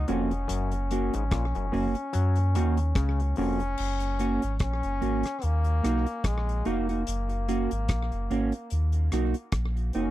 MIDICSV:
0, 0, Header, 1, 6, 480
1, 0, Start_track
1, 0, Key_signature, 6, "major"
1, 0, Tempo, 821918
1, 287, Time_signature, 4, 2, 24, 8
1, 5902, End_track
2, 0, Start_track
2, 0, Title_t, "Clean electric guitar"
2, 0, Program_c, 0, 27
2, 48, Note_on_c, 0, 58, 82
2, 51, Note_on_c, 0, 61, 94
2, 51, Note_on_c, 0, 66, 98
2, 175, Note_off_c, 0, 58, 0
2, 176, Note_off_c, 0, 61, 0
2, 176, Note_off_c, 0, 66, 0
2, 531, Note_on_c, 0, 58, 79
2, 535, Note_on_c, 0, 61, 81
2, 538, Note_on_c, 0, 66, 92
2, 656, Note_off_c, 0, 58, 0
2, 658, Note_off_c, 0, 61, 0
2, 660, Note_off_c, 0, 66, 0
2, 1006, Note_on_c, 0, 58, 78
2, 1008, Note_on_c, 0, 61, 87
2, 1012, Note_on_c, 0, 66, 93
2, 1133, Note_off_c, 0, 58, 0
2, 1134, Note_off_c, 0, 61, 0
2, 1136, Note_off_c, 0, 66, 0
2, 1492, Note_on_c, 0, 58, 79
2, 1494, Note_on_c, 0, 61, 99
2, 1497, Note_on_c, 0, 66, 98
2, 1617, Note_off_c, 0, 58, 0
2, 1617, Note_off_c, 0, 61, 0
2, 1619, Note_off_c, 0, 66, 0
2, 1972, Note_on_c, 0, 58, 75
2, 1975, Note_on_c, 0, 61, 78
2, 1976, Note_on_c, 0, 66, 83
2, 2096, Note_off_c, 0, 58, 0
2, 2098, Note_off_c, 0, 61, 0
2, 2098, Note_off_c, 0, 66, 0
2, 2447, Note_on_c, 0, 58, 72
2, 2452, Note_on_c, 0, 61, 78
2, 2455, Note_on_c, 0, 66, 89
2, 2574, Note_off_c, 0, 58, 0
2, 2576, Note_off_c, 0, 61, 0
2, 2578, Note_off_c, 0, 66, 0
2, 2926, Note_on_c, 0, 58, 74
2, 2930, Note_on_c, 0, 61, 84
2, 2932, Note_on_c, 0, 66, 81
2, 3053, Note_off_c, 0, 58, 0
2, 3055, Note_off_c, 0, 61, 0
2, 3056, Note_off_c, 0, 66, 0
2, 3405, Note_on_c, 0, 58, 87
2, 3409, Note_on_c, 0, 63, 82
2, 3414, Note_on_c, 0, 66, 86
2, 3533, Note_off_c, 0, 58, 0
2, 3535, Note_off_c, 0, 63, 0
2, 3537, Note_off_c, 0, 66, 0
2, 3885, Note_on_c, 0, 58, 91
2, 3888, Note_on_c, 0, 63, 87
2, 3889, Note_on_c, 0, 66, 101
2, 4013, Note_off_c, 0, 58, 0
2, 4014, Note_off_c, 0, 63, 0
2, 4014, Note_off_c, 0, 66, 0
2, 4024, Note_on_c, 0, 66, 57
2, 4030, Note_on_c, 0, 63, 52
2, 4032, Note_on_c, 0, 58, 43
2, 4099, Note_off_c, 0, 66, 0
2, 4102, Note_off_c, 0, 63, 0
2, 4103, Note_off_c, 0, 58, 0
2, 4369, Note_on_c, 0, 58, 86
2, 4372, Note_on_c, 0, 61, 81
2, 4373, Note_on_c, 0, 66, 98
2, 4495, Note_off_c, 0, 58, 0
2, 4496, Note_off_c, 0, 61, 0
2, 4497, Note_off_c, 0, 66, 0
2, 4849, Note_on_c, 0, 58, 85
2, 4853, Note_on_c, 0, 61, 98
2, 4855, Note_on_c, 0, 66, 97
2, 4974, Note_off_c, 0, 58, 0
2, 4977, Note_off_c, 0, 61, 0
2, 4977, Note_off_c, 0, 66, 0
2, 5329, Note_on_c, 0, 58, 79
2, 5331, Note_on_c, 0, 63, 93
2, 5335, Note_on_c, 0, 66, 91
2, 5454, Note_off_c, 0, 58, 0
2, 5455, Note_off_c, 0, 63, 0
2, 5457, Note_off_c, 0, 66, 0
2, 5808, Note_on_c, 0, 58, 81
2, 5810, Note_on_c, 0, 63, 87
2, 5813, Note_on_c, 0, 66, 86
2, 5902, Note_off_c, 0, 58, 0
2, 5902, Note_off_c, 0, 63, 0
2, 5902, Note_off_c, 0, 66, 0
2, 5902, End_track
3, 0, Start_track
3, 0, Title_t, "Trombone"
3, 0, Program_c, 1, 57
3, 0, Note_on_c, 1, 63, 108
3, 59, Note_on_c, 1, 61, 88
3, 68, Note_off_c, 1, 63, 0
3, 1970, Note_off_c, 1, 61, 0
3, 1973, Note_on_c, 1, 61, 102
3, 2667, Note_off_c, 1, 61, 0
3, 2697, Note_on_c, 1, 61, 102
3, 3175, Note_on_c, 1, 58, 101
3, 3184, Note_off_c, 1, 61, 0
3, 3657, Note_on_c, 1, 56, 88
3, 3666, Note_off_c, 1, 58, 0
3, 3896, Note_on_c, 1, 58, 82
3, 3905, Note_off_c, 1, 56, 0
3, 5331, Note_off_c, 1, 58, 0
3, 5810, Note_on_c, 1, 61, 105
3, 5902, Note_off_c, 1, 61, 0
3, 5902, End_track
4, 0, Start_track
4, 0, Title_t, "Clav"
4, 0, Program_c, 2, 7
4, 47, Note_on_c, 2, 41, 85
4, 191, Note_off_c, 2, 41, 0
4, 281, Note_on_c, 2, 42, 96
4, 427, Note_off_c, 2, 42, 0
4, 664, Note_on_c, 2, 44, 74
4, 726, Note_off_c, 2, 44, 0
4, 765, Note_on_c, 2, 46, 89
4, 848, Note_off_c, 2, 46, 0
4, 907, Note_on_c, 2, 42, 73
4, 968, Note_off_c, 2, 42, 0
4, 1005, Note_on_c, 2, 42, 75
4, 1088, Note_off_c, 2, 42, 0
4, 1244, Note_on_c, 2, 54, 86
4, 1389, Note_off_c, 2, 54, 0
4, 1490, Note_on_c, 2, 51, 75
4, 1633, Note_off_c, 2, 51, 0
4, 1729, Note_on_c, 2, 49, 80
4, 1872, Note_off_c, 2, 49, 0
4, 1969, Note_on_c, 2, 41, 77
4, 2112, Note_off_c, 2, 41, 0
4, 5902, End_track
5, 0, Start_track
5, 0, Title_t, "Sub bass"
5, 0, Program_c, 3, 38
5, 53, Note_on_c, 3, 29, 103
5, 274, Note_off_c, 3, 29, 0
5, 292, Note_on_c, 3, 30, 110
5, 643, Note_off_c, 3, 30, 0
5, 671, Note_on_c, 3, 32, 104
5, 764, Note_off_c, 3, 32, 0
5, 773, Note_on_c, 3, 34, 102
5, 897, Note_off_c, 3, 34, 0
5, 909, Note_on_c, 3, 30, 90
5, 1003, Note_off_c, 3, 30, 0
5, 1016, Note_on_c, 3, 30, 87
5, 1139, Note_off_c, 3, 30, 0
5, 1254, Note_on_c, 3, 42, 111
5, 1492, Note_on_c, 3, 39, 89
5, 1500, Note_off_c, 3, 42, 0
5, 1713, Note_off_c, 3, 39, 0
5, 1729, Note_on_c, 3, 37, 97
5, 1951, Note_off_c, 3, 37, 0
5, 1975, Note_on_c, 3, 29, 96
5, 2194, Note_off_c, 3, 29, 0
5, 2215, Note_on_c, 3, 30, 115
5, 2564, Note_off_c, 3, 30, 0
5, 2592, Note_on_c, 3, 32, 95
5, 2684, Note_off_c, 3, 32, 0
5, 2692, Note_on_c, 3, 34, 84
5, 2817, Note_off_c, 3, 34, 0
5, 2829, Note_on_c, 3, 30, 94
5, 2923, Note_off_c, 3, 30, 0
5, 2934, Note_on_c, 3, 32, 88
5, 3058, Note_off_c, 3, 32, 0
5, 3173, Note_on_c, 3, 39, 108
5, 3394, Note_off_c, 3, 39, 0
5, 3414, Note_on_c, 3, 35, 101
5, 3538, Note_off_c, 3, 35, 0
5, 3647, Note_on_c, 3, 34, 92
5, 3870, Note_off_c, 3, 34, 0
5, 3892, Note_on_c, 3, 29, 86
5, 4113, Note_off_c, 3, 29, 0
5, 4134, Note_on_c, 3, 30, 110
5, 4484, Note_off_c, 3, 30, 0
5, 4509, Note_on_c, 3, 32, 97
5, 4602, Note_off_c, 3, 32, 0
5, 4611, Note_on_c, 3, 34, 82
5, 4736, Note_off_c, 3, 34, 0
5, 4748, Note_on_c, 3, 30, 91
5, 4842, Note_off_c, 3, 30, 0
5, 4852, Note_on_c, 3, 32, 91
5, 4976, Note_off_c, 3, 32, 0
5, 5092, Note_on_c, 3, 39, 110
5, 5313, Note_off_c, 3, 39, 0
5, 5330, Note_on_c, 3, 35, 93
5, 5455, Note_off_c, 3, 35, 0
5, 5565, Note_on_c, 3, 34, 104
5, 5788, Note_off_c, 3, 34, 0
5, 5812, Note_on_c, 3, 29, 85
5, 5902, Note_off_c, 3, 29, 0
5, 5902, End_track
6, 0, Start_track
6, 0, Title_t, "Drums"
6, 46, Note_on_c, 9, 42, 64
6, 104, Note_off_c, 9, 42, 0
6, 182, Note_on_c, 9, 42, 52
6, 241, Note_off_c, 9, 42, 0
6, 287, Note_on_c, 9, 42, 99
6, 345, Note_off_c, 9, 42, 0
6, 418, Note_on_c, 9, 42, 53
6, 476, Note_off_c, 9, 42, 0
6, 530, Note_on_c, 9, 42, 81
6, 588, Note_off_c, 9, 42, 0
6, 663, Note_on_c, 9, 42, 60
6, 721, Note_off_c, 9, 42, 0
6, 766, Note_on_c, 9, 42, 76
6, 769, Note_on_c, 9, 36, 116
6, 772, Note_on_c, 9, 37, 111
6, 825, Note_off_c, 9, 42, 0
6, 827, Note_off_c, 9, 36, 0
6, 830, Note_off_c, 9, 37, 0
6, 905, Note_on_c, 9, 42, 53
6, 963, Note_off_c, 9, 42, 0
6, 1014, Note_on_c, 9, 46, 48
6, 1072, Note_off_c, 9, 46, 0
6, 1139, Note_on_c, 9, 42, 62
6, 1197, Note_off_c, 9, 42, 0
6, 1246, Note_on_c, 9, 42, 83
6, 1304, Note_off_c, 9, 42, 0
6, 1376, Note_on_c, 9, 42, 53
6, 1434, Note_off_c, 9, 42, 0
6, 1490, Note_on_c, 9, 42, 82
6, 1548, Note_off_c, 9, 42, 0
6, 1620, Note_on_c, 9, 42, 55
6, 1678, Note_off_c, 9, 42, 0
6, 1725, Note_on_c, 9, 36, 116
6, 1725, Note_on_c, 9, 42, 89
6, 1727, Note_on_c, 9, 37, 121
6, 1783, Note_off_c, 9, 36, 0
6, 1783, Note_off_c, 9, 42, 0
6, 1786, Note_off_c, 9, 37, 0
6, 1868, Note_on_c, 9, 42, 54
6, 1926, Note_off_c, 9, 42, 0
6, 1962, Note_on_c, 9, 46, 67
6, 2020, Note_off_c, 9, 46, 0
6, 2102, Note_on_c, 9, 42, 54
6, 2160, Note_off_c, 9, 42, 0
6, 2204, Note_on_c, 9, 49, 94
6, 2263, Note_off_c, 9, 49, 0
6, 2337, Note_on_c, 9, 42, 49
6, 2395, Note_off_c, 9, 42, 0
6, 2449, Note_on_c, 9, 42, 72
6, 2507, Note_off_c, 9, 42, 0
6, 2582, Note_on_c, 9, 42, 52
6, 2641, Note_off_c, 9, 42, 0
6, 2683, Note_on_c, 9, 42, 76
6, 2688, Note_on_c, 9, 36, 116
6, 2689, Note_on_c, 9, 37, 101
6, 2741, Note_off_c, 9, 42, 0
6, 2746, Note_off_c, 9, 36, 0
6, 2747, Note_off_c, 9, 37, 0
6, 2822, Note_on_c, 9, 42, 50
6, 2880, Note_off_c, 9, 42, 0
6, 2931, Note_on_c, 9, 42, 67
6, 2990, Note_off_c, 9, 42, 0
6, 3056, Note_on_c, 9, 42, 62
6, 3069, Note_on_c, 9, 37, 62
6, 3115, Note_off_c, 9, 42, 0
6, 3128, Note_off_c, 9, 37, 0
6, 3164, Note_on_c, 9, 42, 79
6, 3222, Note_off_c, 9, 42, 0
6, 3296, Note_on_c, 9, 42, 49
6, 3355, Note_off_c, 9, 42, 0
6, 3413, Note_on_c, 9, 42, 81
6, 3414, Note_on_c, 9, 37, 57
6, 3471, Note_off_c, 9, 42, 0
6, 3472, Note_off_c, 9, 37, 0
6, 3542, Note_on_c, 9, 42, 50
6, 3600, Note_off_c, 9, 42, 0
6, 3644, Note_on_c, 9, 42, 88
6, 3645, Note_on_c, 9, 36, 104
6, 3647, Note_on_c, 9, 37, 109
6, 3703, Note_off_c, 9, 36, 0
6, 3703, Note_off_c, 9, 42, 0
6, 3706, Note_off_c, 9, 37, 0
6, 3790, Note_on_c, 9, 42, 50
6, 3848, Note_off_c, 9, 42, 0
6, 3885, Note_on_c, 9, 42, 63
6, 3944, Note_off_c, 9, 42, 0
6, 4024, Note_on_c, 9, 42, 52
6, 4083, Note_off_c, 9, 42, 0
6, 4128, Note_on_c, 9, 42, 94
6, 4186, Note_off_c, 9, 42, 0
6, 4260, Note_on_c, 9, 42, 47
6, 4318, Note_off_c, 9, 42, 0
6, 4372, Note_on_c, 9, 42, 74
6, 4430, Note_off_c, 9, 42, 0
6, 4503, Note_on_c, 9, 42, 55
6, 4561, Note_off_c, 9, 42, 0
6, 4604, Note_on_c, 9, 42, 77
6, 4607, Note_on_c, 9, 36, 113
6, 4610, Note_on_c, 9, 37, 103
6, 4663, Note_off_c, 9, 42, 0
6, 4666, Note_off_c, 9, 36, 0
6, 4668, Note_off_c, 9, 37, 0
6, 4741, Note_on_c, 9, 42, 47
6, 4800, Note_off_c, 9, 42, 0
6, 4852, Note_on_c, 9, 42, 63
6, 4910, Note_off_c, 9, 42, 0
6, 4977, Note_on_c, 9, 42, 63
6, 5036, Note_off_c, 9, 42, 0
6, 5082, Note_on_c, 9, 42, 85
6, 5141, Note_off_c, 9, 42, 0
6, 5212, Note_on_c, 9, 42, 49
6, 5270, Note_off_c, 9, 42, 0
6, 5325, Note_on_c, 9, 42, 80
6, 5326, Note_on_c, 9, 37, 61
6, 5384, Note_off_c, 9, 42, 0
6, 5385, Note_off_c, 9, 37, 0
6, 5456, Note_on_c, 9, 42, 50
6, 5514, Note_off_c, 9, 42, 0
6, 5559, Note_on_c, 9, 42, 89
6, 5562, Note_on_c, 9, 36, 105
6, 5562, Note_on_c, 9, 37, 110
6, 5618, Note_off_c, 9, 42, 0
6, 5620, Note_off_c, 9, 36, 0
6, 5621, Note_off_c, 9, 37, 0
6, 5705, Note_on_c, 9, 42, 49
6, 5763, Note_off_c, 9, 42, 0
6, 5801, Note_on_c, 9, 42, 65
6, 5859, Note_off_c, 9, 42, 0
6, 5902, End_track
0, 0, End_of_file